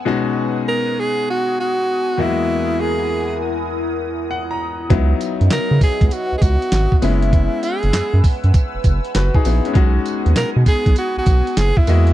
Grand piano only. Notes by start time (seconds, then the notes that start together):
0.05 B2 G#3 C#4 D#4 F#4
2.18 E2 F#3 A#3 F#4 D#5
2.25 G#3
4.31 F#5
4.51 A#5
4.90 F#3 B3 D#4 E4
7.02 G#3 B3 C#4 E4
9.16 F#4 B4
9.35 D#4 G#4
9.46 B3 E4
9.66 G#3 C#4
9.73 G#3 C#4 D#4 F#4
11.87 G#3 A#3 F#4 D#5